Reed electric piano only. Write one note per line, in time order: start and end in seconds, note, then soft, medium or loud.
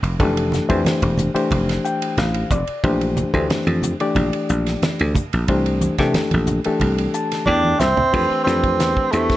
0.19 0.66 E3 medium
0.19 0.66 A3 medium
0.19 0.66 D4 medium
0.19 0.66 G4 medium
0.19 0.66 A4 medium
0.69 1.30 E3 medium
0.69 1.31 A3 medium
0.69 1.31 D4 medium
0.69 1.31 G4 medium
0.69 1.31 C5 loud
1.34 2.57 E3 medium
1.34 2.57 A3 medium
1.34 2.57 D4 medium
1.34 2.57 G4 medium
1.34 2.58 C5 medium
1.85 2.16 G5 medium
2.19 2.49 F5 medium
2.52 2.82 D5 medium
2.84 3.30 E3 medium
2.84 3.30 A3 medium
2.84 3.30 D4 medium
2.84 3.30 G4 medium
2.84 3.31 C5 medium
3.33 3.95 E3 medium
3.33 3.95 A3 medium
3.33 3.95 D4 medium
3.33 3.95 G4 medium
3.33 3.95 C5 medium
4.00 5.23 E3 medium
4.00 5.22 A3 medium
4.00 5.23 D4 medium
4.00 5.23 G4 medium
4.00 5.23 D5 medium
5.49 5.95 E3 medium
5.49 5.95 A3 medium
5.49 5.95 D4 medium
5.49 5.95 G4 medium
5.49 5.95 C5 medium
5.99 6.60 E3 medium
5.99 6.60 A3 medium
5.99 6.60 D4 medium
5.99 6.60 G4 medium
5.99 6.60 A4 medium
6.65 7.87 E3 medium
6.65 7.87 A3 medium
6.65 7.88 D4 medium
6.65 7.87 G4 medium
6.65 7.88 A4 medium
7.14 7.45 A5 medium
7.48 7.78 G5 medium
7.80 8.11 E5 medium
8.13 8.44 E3 medium
8.13 8.44 A3 medium
8.13 8.44 D4 medium
8.13 8.44 G4 medium
8.13 8.44 B4 medium
8.46 9.08 E3 medium
8.46 9.08 A3 medium
8.46 9.08 D4 medium
8.46 9.08 G4 medium
8.46 9.08 B4 medium
9.13 9.37 E3 medium
9.13 9.37 A3 medium
9.13 9.37 D4 medium
9.13 9.37 G4 medium
9.13 9.37 C5 medium